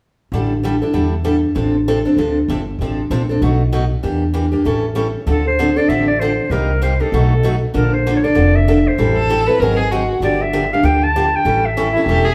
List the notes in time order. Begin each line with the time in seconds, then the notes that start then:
0.32 A1 D3 G3 D4 E4 A4
0.63 D3 G3 D4 E4 A4
0.82 D4 E4 A4
0.93 E2 D3 G3 D4 E4 A4
1.24 D3 G3 D4 E4 A4
1.55 A1 C3 F3 C4 D4 A4
1.88 C3 F3 C4 D4 A4
2.05 C4 D4 A4
2.17 D2 C3 F3 C4 D4 A4
2.48 G1 C3 F3 C4 D4 A4
2.79 A1 C3 F3 C4 D4 A4
3.10 A#1 C3 F3 C4 D4 A4
3.29 C4 D4 A4
3.42 B1 B2 F#3 A3 D#4 F#4
3.72 B2 F#3 A3 D#4 F#4
4.03 E2 E3 A#3 D4 G4
4.34 E3 A#3 D4 G4
4.52 A#3 D4 G4
4.65 A1 E3 G3 C#4 E4 A4
4.95 E3 G3 C#4 E4 A4
5.26 D2 D3 F3 C4 D4 A4
5.31 A4
5.47 C5
5.59 D3 F3 C4 D4 A4
5.76 C4 D4 A4 D5
5.88 A1 D3 F3 C4 D4 A4 E5
6.08 D5
6.20 D3 F3 C4 D4 A4 C5
6.50 C2 C3 G3 A#3 D#4 G4 A#4
6.82 C3 G3 A#3 D#4 G4 C5
7.00 A#3 D#4 G4 A4
7.12 B1 B2 F#3 A3 D#4 F#4
7.43 B2 F#3 A3 D#4 F#4
7.74 A#1 D3 F3 A#3 D4 A4 A#4
7.94 C5
8.07 D3 F3 A#3 D4 A4
8.16 C#5
8.24 A#3 D4 A4 D5
8.35 F1 D3 F3 A#3 D4 A4
8.55 E5
8.68 D3 F3 A#3 D4 A4
8.88 C5
8.98 A1 E3 G3 C4 E4 A4
9.17 A4
9.30 E3 G3 C4 E4 A4
9.47 C4 E4 A4 B4
9.60 G#1 D#3 F#3 C4 D#4 G#4 A#4
9.77 G#4
9.91 D#3 F#3 C4 D#4 F#4 G#4
10.20 G1 D3 F3 A#3 D4 G4
10.24 D5
10.42 E5
10.53 D3 F3 A#3 D4 G4
10.73 A#3 D4 G4 F5
10.83 D2 D3 F3 A#3 D4 G4 G5
11.03 A5
11.16 D3 F3 A#3 D4 G4
11.36 G5
11.45 A1 E3 G3 C#4 E4 A4
11.66 E5
11.77 E3 G3 C#4 E4 A4
11.93 E4 A4
11.98 C#4 E4
12.06 E1 E3 G3 C#4 E4 G4 A4
12.25 G#4